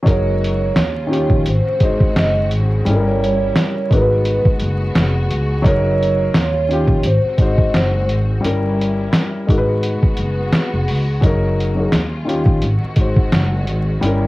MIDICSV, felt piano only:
0, 0, Header, 1, 2, 480
1, 0, Start_track
1, 0, Tempo, 697674
1, 43, Time_signature, 4, 2, 24, 8
1, 9819, End_track
2, 0, Start_track
2, 0, Title_t, "Felt piano"
2, 0, Program_c, 0, 0
2, 17, Note_on_c, 0, 54, 108
2, 26, Note_on_c, 0, 63, 87
2, 37, Note_on_c, 0, 68, 99
2, 46, Note_on_c, 0, 70, 104
2, 155, Control_c, 0, 64, 127
2, 510, Note_off_c, 0, 54, 0
2, 514, Note_off_c, 0, 63, 0
2, 520, Note_off_c, 0, 68, 0
2, 525, Note_off_c, 0, 70, 0
2, 531, Control_c, 0, 64, 0
2, 663, Control_c, 0, 64, 127
2, 736, Note_on_c, 0, 51, 91
2, 748, Note_on_c, 0, 61, 77
2, 758, Note_on_c, 0, 65, 75
2, 768, Note_on_c, 0, 67, 88
2, 990, Note_off_c, 0, 51, 0
2, 995, Note_off_c, 0, 61, 0
2, 1000, Note_off_c, 0, 65, 0
2, 1006, Note_off_c, 0, 67, 0
2, 1013, Control_c, 0, 64, 0
2, 1114, Control_c, 0, 64, 127
2, 1239, Note_on_c, 0, 56, 84
2, 1253, Note_on_c, 0, 63, 72
2, 1261, Note_on_c, 0, 66, 67
2, 1271, Note_on_c, 0, 72, 91
2, 1961, Note_off_c, 0, 56, 0
2, 1962, Note_on_c, 0, 55, 93
2, 1968, Note_off_c, 0, 63, 0
2, 1971, Control_c, 0, 64, 0
2, 1972, Note_off_c, 0, 66, 0
2, 1972, Note_on_c, 0, 61, 80
2, 1977, Note_off_c, 0, 72, 0
2, 1983, Note_on_c, 0, 64, 78
2, 1992, Note_on_c, 0, 69, 76
2, 2027, Note_off_c, 0, 69, 0
2, 2036, Note_on_c, 0, 70, 99
2, 2092, Control_c, 0, 64, 127
2, 2575, Note_off_c, 0, 55, 0
2, 2580, Note_off_c, 0, 61, 0
2, 2586, Note_off_c, 0, 64, 0
2, 2613, Note_off_c, 0, 70, 0
2, 2684, Note_on_c, 0, 56, 95
2, 2694, Control_c, 0, 64, 0
2, 2696, Note_on_c, 0, 63, 79
2, 2704, Note_on_c, 0, 66, 93
2, 2715, Note_on_c, 0, 70, 89
2, 2749, Note_off_c, 0, 70, 0
2, 2761, Note_on_c, 0, 71, 98
2, 2814, Control_c, 0, 64, 127
2, 3492, Note_off_c, 0, 56, 0
2, 3497, Note_off_c, 0, 63, 0
2, 3501, Note_off_c, 0, 66, 0
2, 3530, Note_off_c, 0, 71, 0
2, 3865, Note_on_c, 0, 54, 118
2, 3877, Note_on_c, 0, 63, 99
2, 3886, Note_on_c, 0, 68, 95
2, 3891, Control_c, 0, 64, 0
2, 3898, Note_on_c, 0, 70, 117
2, 4032, Control_c, 0, 64, 127
2, 4354, Note_off_c, 0, 54, 0
2, 4360, Note_off_c, 0, 63, 0
2, 4365, Note_off_c, 0, 68, 0
2, 4371, Note_off_c, 0, 70, 0
2, 4371, Control_c, 0, 64, 0
2, 4495, Control_c, 0, 64, 127
2, 4601, Note_on_c, 0, 51, 79
2, 4610, Note_on_c, 0, 61, 71
2, 4622, Note_on_c, 0, 65, 74
2, 4632, Note_on_c, 0, 67, 97
2, 4842, Note_off_c, 0, 51, 0
2, 4846, Note_off_c, 0, 61, 0
2, 4852, Control_c, 0, 64, 0
2, 4853, Note_off_c, 0, 65, 0
2, 4857, Note_off_c, 0, 67, 0
2, 4980, Control_c, 0, 64, 127
2, 5075, Note_on_c, 0, 56, 81
2, 5087, Note_on_c, 0, 63, 73
2, 5096, Note_on_c, 0, 66, 73
2, 5108, Note_on_c, 0, 72, 98
2, 5784, Note_on_c, 0, 55, 87
2, 5794, Note_on_c, 0, 61, 70
2, 5799, Note_off_c, 0, 56, 0
2, 5804, Note_on_c, 0, 64, 72
2, 5805, Note_off_c, 0, 63, 0
2, 5809, Note_off_c, 0, 66, 0
2, 5812, Control_c, 0, 64, 0
2, 5814, Note_on_c, 0, 70, 96
2, 5815, Note_off_c, 0, 72, 0
2, 5946, Control_c, 0, 64, 127
2, 6406, Note_off_c, 0, 55, 0
2, 6411, Note_off_c, 0, 61, 0
2, 6417, Note_off_c, 0, 64, 0
2, 6422, Note_off_c, 0, 70, 0
2, 6516, Note_on_c, 0, 56, 90
2, 6526, Note_on_c, 0, 63, 78
2, 6531, Control_c, 0, 64, 0
2, 6536, Note_on_c, 0, 66, 84
2, 6547, Note_on_c, 0, 70, 75
2, 6585, Note_off_c, 0, 70, 0
2, 6589, Note_on_c, 0, 71, 109
2, 6668, Control_c, 0, 64, 127
2, 7327, Note_off_c, 0, 56, 0
2, 7333, Note_off_c, 0, 63, 0
2, 7337, Note_off_c, 0, 66, 0
2, 7364, Note_off_c, 0, 71, 0
2, 7713, Note_on_c, 0, 54, 93
2, 7726, Note_on_c, 0, 63, 87
2, 7733, Control_c, 0, 64, 0
2, 7735, Note_on_c, 0, 68, 84
2, 7746, Note_on_c, 0, 70, 105
2, 7845, Control_c, 0, 64, 127
2, 8024, Note_off_c, 0, 54, 0
2, 8031, Note_off_c, 0, 63, 0
2, 8035, Note_off_c, 0, 68, 0
2, 8041, Note_off_c, 0, 70, 0
2, 8085, Note_on_c, 0, 54, 75
2, 8096, Note_on_c, 0, 63, 65
2, 8108, Note_on_c, 0, 68, 72
2, 8118, Note_on_c, 0, 70, 78
2, 8197, Note_off_c, 0, 54, 0
2, 8203, Note_off_c, 0, 63, 0
2, 8209, Note_off_c, 0, 68, 0
2, 8213, Note_off_c, 0, 70, 0
2, 8213, Control_c, 0, 64, 0
2, 8315, Control_c, 0, 64, 127
2, 8428, Note_on_c, 0, 51, 79
2, 8439, Note_on_c, 0, 61, 80
2, 8447, Note_on_c, 0, 65, 83
2, 8456, Note_on_c, 0, 67, 85
2, 8676, Note_off_c, 0, 51, 0
2, 8681, Note_off_c, 0, 61, 0
2, 8685, Note_off_c, 0, 65, 0
2, 8690, Note_off_c, 0, 67, 0
2, 8693, Control_c, 0, 64, 0
2, 8803, Control_c, 0, 64, 127
2, 8915, Note_on_c, 0, 56, 62
2, 8926, Note_on_c, 0, 63, 58
2, 8937, Note_on_c, 0, 66, 68
2, 8948, Note_on_c, 0, 72, 76
2, 9532, Note_off_c, 0, 56, 0
2, 9537, Note_off_c, 0, 63, 0
2, 9543, Note_off_c, 0, 66, 0
2, 9549, Note_off_c, 0, 72, 0
2, 9638, Note_on_c, 0, 55, 98
2, 9652, Note_on_c, 0, 61, 87
2, 9653, Control_c, 0, 64, 0
2, 9661, Note_on_c, 0, 64, 88
2, 9671, Note_on_c, 0, 70, 100
2, 9777, Control_c, 0, 64, 127
2, 9819, Note_off_c, 0, 55, 0
2, 9819, Note_off_c, 0, 61, 0
2, 9819, Note_off_c, 0, 64, 0
2, 9819, Note_off_c, 0, 70, 0
2, 9819, End_track
0, 0, End_of_file